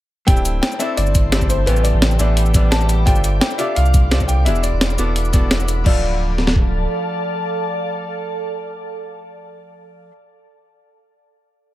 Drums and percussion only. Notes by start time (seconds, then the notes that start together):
0.28 kick, closed hi-hat
0.37 shaker
0.45 closed hi-hat, shaker
0.63 snare, closed hi-hat
0.72 shaker
0.80 closed hi-hat, shaker
0.97 closed hi-hat
1.07 shaker
1.15 kick, closed hi-hat, shaker
1.32 snare, closed hi-hat
1.41 kick, shaker
1.50 closed hi-hat, shaker
1.67 closed hi-hat
1.76 shaker
1.85 closed hi-hat, shaker
2.02 snare, closed hi-hat
2.11 shaker
2.19 closed hi-hat, shaker
2.37 closed hi-hat
2.46 shaker
2.54 kick, closed hi-hat, shaker
2.72 snare, closed hi-hat
2.81 shaker
2.89 closed hi-hat, shaker
3.07 kick, closed hi-hat
3.16 shaker
3.24 closed hi-hat, shaker
3.41 snare, closed hi-hat
3.50 shaker
3.59 closed hi-hat, shaker
3.76 closed hi-hat
3.86 shaker
3.94 kick, closed hi-hat, shaker
4.11 snare, closed hi-hat
4.20 kick, shaker
4.29 closed hi-hat, shaker
4.46 closed hi-hat
4.55 shaker
4.64 closed hi-hat, shaker
4.81 snare, closed hi-hat
4.90 shaker
4.98 closed hi-hat, shaker
5.16 closed hi-hat
5.25 shaker
5.33 kick, closed hi-hat, shaker
5.51 snare, closed hi-hat
5.60 shaker
5.68 closed hi-hat, shaker
5.86 kick, crash
6.38 snare
6.47 snare
6.56 kick